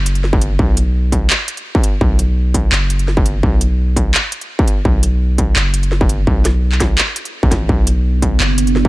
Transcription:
0.00 0.58 F#1 loud
0.06 closed hi-hat medium
0.15 closed hi-hat soft
0.24 snare soft
0.33 kick loud
0.41 closed hi-hat medium
0.59 1.29 B1 loud
0.59 kick loud
0.77 closed hi-hat medium
1.12 kick medium
1.12 closed hi-hat medium
1.30 clap loud
1.48 closed hi-hat medium
1.57 closed hi-hat soft
1.75 kick loud
1.84 closed hi-hat medium
2.01 2.71 B1 loud
2.01 kick loud
2.19 closed hi-hat medium
2.54 kick medium
2.54 closed hi-hat medium
2.72 3.42 F#1 loud
2.72 clap loud
2.90 closed hi-hat medium
2.99 closed hi-hat soft
3.08 snare soft
3.17 kick loud
3.26 closed hi-hat medium
3.43 4.13 B1 loud
3.43 kick loud
3.61 closed hi-hat medium
3.96 kick medium
3.96 closed hi-hat medium
4.14 clap loud
4.32 closed hi-hat medium
4.41 closed hi-hat soft
4.59 kick loud
4.68 closed hi-hat medium
4.85 5.55 B1 loud
4.85 kick loud
5.03 closed hi-hat medium
5.38 kick medium
5.38 closed hi-hat medium
5.56 6.26 F#1 loud
5.56 clap loud
5.74 closed hi-hat medium
5.83 closed hi-hat soft
5.92 snare soft
6.01 kick loud
6.09 closed hi-hat medium
6.27 6.97 B1 loud
6.27 kick loud
6.45 snare medium
6.45 closed hi-hat medium
6.72 clap soft
6.80 kick medium
6.80 snare medium
6.80 closed hi-hat medium
6.98 clap loud
7.16 closed hi-hat medium
7.25 closed hi-hat soft
7.43 7.68 A1 medium
7.43 kick medium
7.51 kick medium
7.51 snare soft
7.51 closed hi-hat medium
7.69 8.39 B1 loud
7.69 8.88 B3 medium
7.69 kick loud
7.87 closed hi-hat medium
7.95 8.88 D4 medium
8.20 8.88 F#4 medium
8.20 kick medium
8.20 closed hi-hat medium
8.37 8.88 F#1 medium
8.37 8.88 D5 medium
8.37 clap loud
8.58 closed hi-hat medium
8.67 closed hi-hat soft
8.76 snare soft
8.85 kick loud

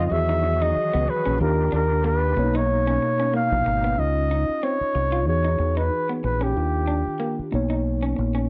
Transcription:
0.00 0.12 C#3 medium
0.00 0.12 C4 medium
0.00 0.12 D#4 medium
0.00 0.12 F4 medium
0.06 1.36 E3 medium
0.06 1.38 F#4 medium
0.06 1.38 G#4 medium
0.06 0.14 D#5 medium
0.11 0.72 E2 loud
0.11 1.37 D#3 medium
0.11 1.38 F#3 medium
0.11 1.38 F#4 medium
0.11 1.38 G#4 medium
0.11 0.63 E5 loud
0.29 0.40 D#4 medium
0.44 muted clean electric guitar stroke soft
0.62 0.73 D#4 medium
0.62 1.11 D#5 loud
0.76 muted fingered electric bass stroke soft
0.93 1.07 C#2 medium
0.93 1.05 B3 medium
1.08 1.40 B4 medium
1.08 muted clean electric guitar stroke soft
1.26 1.39 A#1 medium
1.26 1.37 C#4 medium
1.38 1.70 D#2 loud
1.38 2.35 D#3 medium
1.38 2.36 D#3 medium
1.38 2.35 D4 medium
1.38 2.36 D4 medium
1.38 2.35 F4 medium
1.38 2.37 F4 medium
1.38 2.35 G4 medium
1.38 2.37 G4 medium
1.38 1.70 A#4 medium
1.72 2.33 D#2 medium
1.72 1.86 D4 medium
1.72 2.03 A#4 medium
2.04 2.18 A#3 medium
2.04 2.58 B4 medium
2.35 2.97 B1 medium
2.35 3.94 B2 medium
2.35 3.96 B2 medium
2.35 3.96 A#3 medium
2.35 3.94 A#3 medium
2.35 2.44 C#4 soft
2.35 3.96 D#4 medium
2.35 3.96 C#5 medium
2.35 muted clean electric guitar stroke soft
2.44 3.97 D#4 medium
2.55 2.66 D#4 medium
2.55 3.34 C#5 medium
2.87 2.98 C#4 medium
3.02 muted clean electric guitar stroke soft
3.20 3.31 C#4 medium
3.34 3.47 A#3 medium
3.34 4.01 F5 loud
3.52 3.65 A#1 medium
3.66 3.95 G#1 medium
3.66 muted clean electric guitar stroke soft
3.84 3.95 B3 medium
3.97 4.44 C#2 medium
3.97 5.24 C#4 medium
3.97 5.24 D#4 soft
3.97 5.25 F4 medium
3.97 4.65 D#5 medium
3.97 5.25 D#5 medium
4.31 4.45 D#4 medium
4.49 muted fingered electric bass stroke soft
4.63 4.77 C4 medium
4.63 5.27 C#5 medium
4.81 muted fingered electric bass stroke soft
4.95 5.28 C2 medium
4.95 muted clean electric guitar stroke soft
5.12 5.24 F4 medium
5.26 5.57 E2 medium
5.26 6.52 E3 medium
5.26 6.53 D#4 medium
5.26 6.54 F#4 medium
5.26 6.54 G#4 medium
5.26 5.79 C#5 medium
5.45 5.56 D#4 medium
5.59 5.89 E2 medium
5.59 muted clean electric guitar stroke soft
5.77 5.88 D#4 medium
5.77 6.10 B4 medium
6.09 6.21 B3 medium
6.24 6.53 A#1 medium
6.24 6.45 B4 medium
6.24 muted clean electric guitar stroke soft
6.41 6.52 C#4 medium
6.41 7.39 G4 medium
6.56 7.02 D#2 loud
6.56 7.53 D#3 medium
6.56 7.53 D4 medium
6.56 7.53 F4 medium
6.56 7.53 G4 medium
6.87 7.02 D4 medium
7.07 muted fingered electric bass stroke soft
7.20 7.34 A#3 medium
7.39 muted fingered electric bass stroke soft
7.52 8.13 B1 medium
7.52 8.49 A#3 medium
7.52 8.49 B3 medium
7.52 8.49 D#4 medium
7.52 8.49 C#5 medium
7.52 muted clean electric guitar stroke soft
7.70 7.81 D#4 medium
8.03 8.14 C#4 medium
8.16 8.47 A#1 medium
8.16 muted clean electric guitar stroke soft
8.35 8.46 C#4 medium

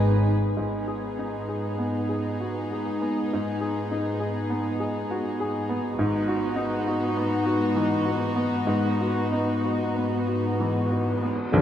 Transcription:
0.00 0.33 G#1 medium
0.00 0.32 G#2 medium
0.00 0.53 G#2 medium
0.00 0.57 D#3 soft
0.00 0.37 B3 medium
0.00 0.33 D#4 medium
0.00 0.37 B4 medium
0.57 1.46 G#1 soft
0.57 5.93 G#2 soft
0.57 3.27 G#2 soft
0.57 5.93 B3 soft
0.57 5.93 D#4 soft
0.57 5.93 G#4 soft
0.87 1.37 G#4 soft
1.19 1.68 D#4 soft
1.48 1.98 G#4 soft
1.79 2.28 B3 soft
2.09 2.59 G#4 soft
2.40 2.71 F#4 soft
2.71 3.20 G#4 soft
3.02 3.49 B3 soft
3.33 5.94 G#2 soft
3.61 4.08 G#4 soft
3.91 4.39 D#4 soft
4.19 4.68 G#4 soft
4.50 4.98 B3 soft
4.80 5.27 G#4 soft
5.11 5.39 F#4 soft
5.40 5.86 G#4 soft
5.69 5.98 B3 soft
5.97 6.82 G#1 medium
5.97 11.27 G#2 soft
5.97 8.64 G#2 medium
5.97 11.27 B3 medium
5.97 11.27 D#4 medium
5.97 11.32 F#4 soft
6.28 6.75 F#4 soft
6.56 7.03 D#4 soft
6.87 7.34 F#4 soft
7.17 7.64 B3 soft
7.46 7.93 F#4 soft
7.75 8.05 E3 soft
8.05 8.55 F#4 soft
8.36 8.86 B3 soft
8.67 11.47 G#2 soft
9.01 9.51 F#4 soft
9.32 9.82 D#4 soft
9.64 10.14 F#4 soft
9.96 10.46 B3 soft
10.27 10.77 F#4 soft
10.60 10.90 E3 soft
10.91 11.40 F#4 soft
11.23 11.53 B3 soft
11.52 11.62 B1 medium
11.52 11.62 D3 medium
11.52 11.62 F#3 medium
11.52 11.62 D4 medium
11.52 tam-tam medium

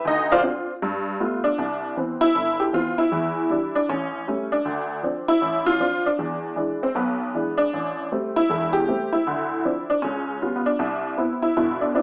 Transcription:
0.05 0.38 D2 medium
0.05 0.30 D#4 medium
0.05 0.30 D#5 medium
0.32 0.40 F4 medium
0.32 0.39 C5 medium
0.32 0.39 D5 medium
0.32 0.39 F5 loud
0.43 0.69 C4 medium
0.43 0.69 D4 soft
0.43 0.70 F4 medium
0.82 1.15 G2 medium
1.20 1.46 G3 medium
1.20 1.46 A3 soft
1.20 1.46 B3 soft
1.20 1.47 F4 medium
1.44 1.92 D4 medium
1.58 1.91 C2 medium
1.97 2.23 E3 soft
1.97 2.23 B3 soft
1.97 2.23 C4 medium
2.21 2.61 E4 loud
2.35 2.68 G1 medium
2.60 2.72 G4 medium
2.73 2.99 E3 soft
2.73 2.99 B3 soft
2.73 2.99 C4 medium
2.73 2.97 F4 medium
2.98 3.77 E4 medium
3.12 3.45 E2 medium
3.12 3.45 E3 medium
3.50 3.76 E3 soft
3.50 3.76 G3 soft
3.50 3.74 D4 medium
3.75 3.88 D4 medium
3.89 4.22 A1 medium
3.89 4.27 C#4 medium
4.28 4.53 G3 soft
4.28 4.53 A3 soft
4.28 4.54 C#4 medium
4.52 5.00 D4 medium
4.65 4.98 D2 medium
5.03 5.29 F3 soft
5.03 5.30 C4 soft
5.03 5.30 D4 medium
5.28 5.68 E4 medium
5.41 5.75 A1 medium
5.66 6.06 F4 loud
5.80 6.06 F3 soft
5.80 6.06 C4 soft
5.80 6.05 D4 medium
6.06 6.56 D4 medium
6.19 6.52 E2 medium
6.56 6.83 E3 soft
6.56 6.83 G#3 soft
6.56 6.83 D4 medium
6.83 6.95 C4 medium
6.95 7.28 B1 medium
6.95 7.61 B3 medium
7.34 7.60 E3 soft
7.34 7.60 G#3 soft
7.34 7.56 D4 medium
7.58 8.06 D4 medium
7.73 8.06 A1 medium
8.12 8.37 G3 soft
8.12 8.37 A3 soft
8.12 8.38 C4 medium
8.36 8.72 E4 medium
8.50 8.83 E1 medium
8.50 8.82 E2 medium
8.73 9.13 G4 loud
8.87 9.14 G3 soft
8.87 9.14 A3 soft
8.87 9.14 C4 soft
9.12 9.85 E4 medium
9.27 9.59 D2 medium
9.27 9.60 D3 medium
9.64 9.90 F3 soft
9.64 9.91 C4 soft
9.64 9.88 D4 medium
9.90 10.02 D4 medium
10.02 10.36 C#2 medium
10.02 10.41 C#4 medium
10.42 10.68 G3 soft
10.42 10.54 B3 soft
10.42 10.68 C#4 soft
10.42 10.68 F4 medium
10.56 10.65 B3 medium
10.66 11.14 D4 medium
10.79 11.12 C2 medium
11.18 11.44 B3 medium
11.18 11.44 C4 soft
11.18 11.41 E4 medium
11.42 11.55 E4 medium
11.57 11.90 G1 medium
11.57 11.90 B2 medium
11.57 11.82 E4 medium
11.81 11.94 D4 medium
11.94 12.02 B3 soft
11.94 12.02 C4 soft
11.94 12.00 D4 medium
11.94 12.02 E4 medium

